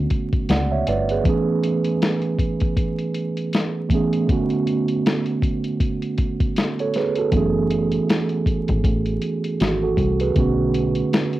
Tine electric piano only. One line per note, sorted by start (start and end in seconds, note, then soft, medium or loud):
0.00 1.27 D3 medium
0.00 1.25 A3 medium
0.00 1.26 B3 medium
0.00 1.26 C#4 medium
0.00 1.27 F#4 medium
0.50 0.70 D5 medium
0.50 0.70 F#5 medium
0.71 0.87 C#5 medium
0.71 0.87 E5 medium
0.88 1.09 B4 medium
0.88 1.08 D5 medium
1.11 1.28 G#4 soft
1.11 1.46 B4 medium
1.23 2.55 E3 medium
1.23 2.56 A3 medium
1.23 2.56 B3 medium
1.28 2.57 C#4 medium
1.28 2.58 G#4 medium
3.89 4.23 E3 medium
3.89 4.24 A3 medium
3.89 4.24 B3 medium
3.94 4.25 C#4 medium
3.94 4.26 G#4 medium
4.27 5.58 D3 medium
4.27 5.59 A3 medium
4.27 5.60 B3 medium
4.31 5.61 C#4 medium
4.31 5.61 F#4 medium
6.80 6.95 A4 medium
6.80 6.95 C#5 medium
6.96 7.16 G#4 medium
6.96 7.16 B4 medium
7.18 7.54 F#4 soft
7.18 7.53 A4 medium
7.31 8.62 E3 medium
7.31 8.63 A3 medium
7.31 8.64 B3 medium
7.35 8.65 C#4 medium
7.35 8.65 G#4 medium
9.60 9.81 F#4 medium
9.83 10.19 F#4 medium
9.83 10.18 A4 medium
10.21 10.57 G#4 medium
10.21 10.57 B4 medium
10.34 11.40 D3 medium
10.34 11.40 A3 medium
10.34 11.40 B3 medium
10.39 11.40 C#4 medium
10.39 11.40 F#4 medium